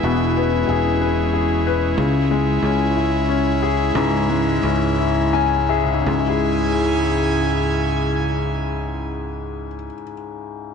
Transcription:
0.00 0.64 E1 loud
0.00 1.99 E3 medium
0.00 6.03 G#3 medium
0.00 0.37 B3 medium
0.00 1.94 E4 medium
0.00 0.68 G#4 medium
0.00 1.01 B4 medium
0.04 1.94 B2 medium
0.04 6.03 C#4 medium
0.37 1.62 B3 medium
0.68 1.94 E1 medium
0.68 1.32 G#4 medium
1.01 1.65 B4 medium
1.33 1.96 G#4 medium
1.67 1.97 B4 medium
1.98 2.58 C#2 loud
1.98 3.91 C#3 medium
1.98 6.03 E4 loud
2.31 3.58 G#3 medium
2.62 3.91 C#2 loud
2.62 3.27 C#4 medium
2.96 4.25 E4 medium
3.29 4.59 C#4 medium
3.63 4.95 G#4 medium
3.95 4.59 C#2 loud
3.95 5.92 G#2 medium
4.30 5.66 G#3 medium
4.63 6.02 C#2 loud
4.63 5.32 C#4 medium
4.98 6.03 E4 medium
5.33 6.04 C#4 medium
5.33 5.67 G#5 medium
5.69 6.05 G#4 medium
5.69 6.04 E5 medium
5.84 9.67 C#2 soft
5.93 9.76 G#2 medium
6.02 9.84 C#3 soft
6.06 9.89 C#2 loud
6.06 9.90 C#3 medium
6.06 9.90 C#4 medium
6.06 9.90 E4 medium
6.06 9.90 G#4 medium
6.06 9.90 G#5 medium
6.11 9.94 G#3 soft
6.20 10.02 E4 medium
6.29 10.12 G#4 medium

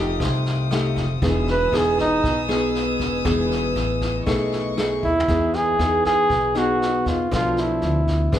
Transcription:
0.00 0.16 F1 medium
0.00 0.18 F3 medium
0.00 0.67 A3 medium
0.00 1.17 A3 medium
0.00 0.67 D#4 medium
0.00 0.67 G4 medium
0.00 1.18 F5 medium
0.00 1.18 G5 medium
0.00 1.19 D#6 medium
0.20 0.92 C2 medium
0.20 1.19 C3 medium
0.20 kick medium
0.20 cross-stick medium
0.20 snare soft
0.46 snare soft
0.71 1.04 A3 medium
0.71 1.04 D#4 medium
0.71 1.04 G4 medium
0.71 cross-stick medium
0.71 snare soft
0.96 1.20 F1 medium
0.96 kick soft
0.96 snare soft
1.20 1.69 E1 loud
1.20 2.21 E3 medium
1.20 1.55 B3 medium
1.20 1.55 D#4 medium
1.20 1.55 G#4 medium
1.20 4.23 B4 medium
1.20 5.23 G#5 medium
1.20 4.23 D#6 medium
1.20 4.22 E6 medium
1.20 kick medium
1.20 snare soft
1.47 1.79 B4 medium
1.47 snare soft
1.72 2.19 E1 medium
1.72 2.23 B3 medium
1.72 2.23 D#4 medium
1.72 2.23 G#4 medium
1.72 cross-stick medium
1.72 snare soft
1.78 2.00 G#4 medium
1.98 2.46 D#4 medium
1.98 kick soft
1.98 snare soft
2.23 2.96 B1 medium
2.23 3.23 B2 medium
2.23 kick medium
2.23 snare soft
2.48 3.21 B3 medium
2.48 3.21 D#4 medium
2.48 3.21 G#4 medium
2.48 cross-stick medium
2.48 snare soft
2.75 snare soft
3.00 3.23 E1 medium
3.00 kick soft
3.00 snare soft
3.25 3.72 E1 loud
3.25 4.24 E3 medium
3.25 4.22 B3 medium
3.25 4.22 D#4 medium
3.25 4.23 G#4 medium
3.25 kick medium
3.25 cross-stick medium
3.25 snare soft
3.51 snare soft
3.76 4.23 A1 loud
3.76 snare soft
4.01 kick soft
4.01 snare soft
4.26 4.99 B1 medium
4.26 5.25 B2 medium
4.26 4.73 A3 medium
4.26 4.73 D#4 medium
4.26 4.73 G#4 medium
4.26 5.28 D#5 medium
4.26 5.27 C#6 medium
4.26 kick medium
4.26 cross-stick medium
4.26 snare soft
4.52 snare soft
4.77 5.11 A3 medium
4.77 5.12 D#4 medium
4.77 5.12 G#4 medium
4.77 cross-stick medium
4.77 snare soft
5.03 5.27 D#2 medium
5.03 5.57 E4 loud
5.03 kick soft
5.20 floor tom medium
5.28 5.76 E2 loud
5.28 6.27 E3 medium
5.28 5.75 B3 medium
5.28 5.75 D#4 medium
5.28 5.75 G#4 medium
5.28 kick medium
5.28 snare soft
5.53 6.05 G#4 loud
5.53 snare soft
5.79 6.26 E2 medium
5.79 6.30 B3 medium
5.79 6.30 D#4 medium
5.79 6.30 G#4 medium
5.79 cross-stick soft
5.79 snare soft
6.05 6.59 G#4 loud
6.05 kick soft
6.05 snare soft
6.30 7.02 B1 medium
6.30 7.29 B2 medium
6.30 kick medium
6.30 snare soft
6.55 7.27 B3 medium
6.55 7.27 D#4 medium
6.55 7.10 F#4 medium
6.55 7.27 G#4 medium
6.55 cross-stick medium
6.55 snare soft
6.82 snare soft
7.06 7.30 E2 medium
7.06 7.32 F4 medium
7.06 kick soft
7.06 snare soft
7.31 7.79 B1 loud
7.31 8.30 B2 medium
7.31 8.00 F3 medium
7.31 8.00 A3 medium
7.31 8.00 D4 medium
7.31 7.61 F4 medium
7.31 kick medium
7.31 cross-stick medium
7.31 snare soft
7.57 8.39 E4 medium
7.57 snare soft
7.82 8.30 D2 medium
7.82 snare soft
8.07 kick soft
8.07 snare soft
8.32 8.39 E2 medium
8.32 8.39 E3 medium
8.32 8.39 B3 medium
8.32 8.39 D4 medium
8.32 8.39 G#4 medium
8.32 kick medium
8.32 cross-stick medium
8.32 snare soft

